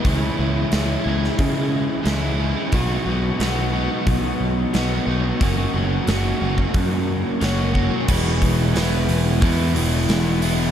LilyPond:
<<
  \new Staff \with { instrumentName = "Overdriven electric guitar" } { \time 4/4 \key e \lydian \tempo 4 = 90 <cis e gis cis' e'>8 <gis cis' e'>8 <e gis cis' e'>8 <gis cis' e'>4. <e gis cis' e'>8 <gis cis' e'>8 | <b, fis b dis' fis'>8 <b dis' fis'>8 <fis b dis' fis'>8 <b dis' fis'>4. <fis b dis' fis'>8 <b dis' fis'>8 | <fis, cis fis ais cis' fis'>8 <fis ais cis' fis'>8 <fis ais cis' fis'>8 <fis ais cis' fis'>4. <fis ais cis' fis'>8 <fis ais cis' fis'>8 | <e, b, e gis b e'>4 <e gis b e'>4 <e, b, e gis b e'>8 <e gis b e'>4 <e gis b e'>8 | }
  \new Staff \with { instrumentName = "Picked electric bass" } { \clef bass \time 4/4 \key e \lydian cis,8 cis,8 cis,8 cis,8 cis4 cis,4 | b,,8 b,,8 b,,4 b,,8 b,,8 b,,8 b,,8 | fis,,8 fis,,8 fis,,8 fis,,8 fis,4 fis,,4 | e,,8 e,,8 e,,8 e,,8 e,8 e,,8 e,,4 | }
  \new DrumStaff \with { instrumentName = "Drums" } \drummode { \time 4/4 <hho bd>4 <hho sn>8. sn16 <hho bd>4 <hho sn>4 | <hho bd>4 <hho sn>4 <hho bd>4 <hho sn>4 | <hho bd>4 <hho sn>8. bd16 <hho bd>4 <hho sn>8 bd8 | <cymc bd>8 <hho bd>8 <hho sn>8 hho8 <hho bd>8 hho8 <hho sn>8 hho8 | }
>>